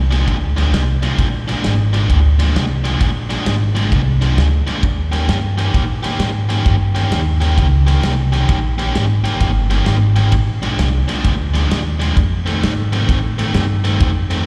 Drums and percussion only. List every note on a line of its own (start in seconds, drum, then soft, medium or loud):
0.12 snare soft
0.12 ride medium
0.28 kick loud
0.28 ride medium
0.58 snare soft
0.58 ride medium
0.74 snare loud
0.74 ride medium
1.03 snare soft
1.03 ride medium
1.19 kick loud
1.19 ride medium
1.49 snare soft
1.49 ride medium
1.64 snare loud
1.64 ride medium
1.94 snare soft
1.94 ride medium
2.10 kick medium
2.10 ride medium
2.39 snare soft
2.39 ride medium
2.56 snare loud
2.56 ride medium
2.85 snare soft
2.85 ride medium
3.01 kick loud
3.01 snare soft
3.01 ride medium
3.30 snare soft
3.30 ride medium
3.46 snare loud
3.46 ride medium
3.76 snare soft
3.76 ride medium
3.92 kick loud
3.92 ride medium
4.22 snare soft
4.22 ride medium
4.38 snare loud
4.38 ride medium
4.67 snare soft
4.67 ride medium
4.83 kick loud
4.83 ride medium
5.13 snare soft
5.13 ride medium
5.29 snare loud
5.29 ride medium
5.58 snare soft
5.58 ride medium
5.74 kick loud
5.74 ride medium
6.04 snare soft
6.04 ride medium
6.19 snare loud
6.19 ride medium
6.50 snare soft
6.50 ride medium
6.66 kick loud
6.66 snare soft
6.66 ride medium
6.96 snare soft
6.96 ride medium
7.12 snare loud
7.12 ride medium
7.41 snare soft
7.41 ride medium
7.58 kick loud
7.58 ride medium
7.88 snare soft
7.88 ride medium
8.03 snare loud
8.03 ride medium
8.33 snare soft
8.33 ride medium
8.49 kick loud
8.49 ride medium
8.79 snare soft
8.79 ride medium
8.95 snare loud
8.95 ride medium
9.25 snare soft
9.25 ride medium
9.40 kick loud
9.40 ride medium
9.70 snare soft
9.70 ride medium
9.86 snare loud
9.86 ride medium
10.16 snare soft
10.16 ride medium
10.32 kick loud
10.32 ride medium
10.63 snare soft
10.63 ride medium
10.79 snare loud
10.79 ride medium
11.09 snare soft
11.09 ride medium
11.24 kick loud
11.24 ride medium
11.55 snare soft
11.55 ride medium
11.71 snare loud
11.71 ride medium
12.01 snare soft
12.01 ride medium
12.17 kick loud
12.17 snare soft
12.17 ride medium
12.47 snare soft
12.47 ride soft
12.63 snare loud
12.63 ride medium
12.93 snare soft
12.93 ride medium
13.09 kick loud
13.09 ride medium
13.39 snare soft
13.39 ride medium
13.54 snare loud
13.54 ride medium
13.85 snare soft
13.85 ride medium
14.00 kick loud
14.00 snare soft
14.00 ride medium
14.30 snare soft
14.30 ride medium